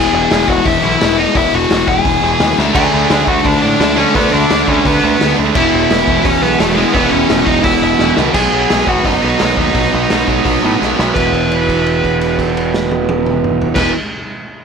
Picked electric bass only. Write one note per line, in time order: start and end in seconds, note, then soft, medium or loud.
0.13 0.25 E1 loud
0.32 0.43 E1 loud
0.49 0.60 E1 loud
0.66 0.77 E1 medium
0.84 0.96 B1 loud
1.03 1.25 E1 medium
1.36 1.47 E1 loud
1.53 1.65 E1 loud
1.71 1.82 E1 medium
1.88 1.99 E1 medium
2.06 2.17 E1 medium
2.22 2.34 E1 medium
2.40 2.52 D#2 medium
2.59 2.70 D2 loud
2.75 2.87 D2 medium
2.93 3.05 D2 loud
3.11 3.22 D2 loud
3.28 3.39 D2 medium
3.45 3.57 D2 medium
3.63 3.75 A2 medium
3.80 4.03 D2 medium
4.16 4.27 D2 loud
4.34 4.45 D2 loud
4.51 4.62 D2 medium
4.68 4.80 D2 loud
4.86 4.97 D2 loud
5.04 5.15 D2 loud
5.22 5.33 D2 loud
5.39 5.50 D2 loud
5.55 5.67 E1 loud
5.74 5.85 E1 loud
5.91 6.02 E1 loud
6.08 6.19 E1 medium
6.25 6.36 E1 medium
6.42 6.54 B1 loud
6.60 6.83 E1 medium
6.95 7.06 E1 loud
7.12 7.24 E1 loud
7.30 7.41 E1 loud
7.48 7.59 E1 medium
7.65 7.76 E1 medium
7.82 7.94 E1 loud
8.00 8.11 E1 medium
8.18 8.29 C#2 loud
8.35 8.46 B1 medium
8.53 8.64 B1 medium
8.71 8.82 B1 medium
8.87 8.99 F#1 medium
9.05 9.16 F#1 loud
9.23 9.34 B1 medium
9.42 9.53 B1 medium
9.58 9.69 D#2 loud
9.75 9.87 B1 medium
9.94 10.05 B1 medium
10.12 10.23 B1 medium
10.28 10.40 B1 medium
10.46 10.57 B1 medium
10.65 10.76 A2 medium
10.82 10.93 B1 medium
10.99 11.11 B1 medium
11.16 13.68 E1 medium
13.76 13.91 E1 medium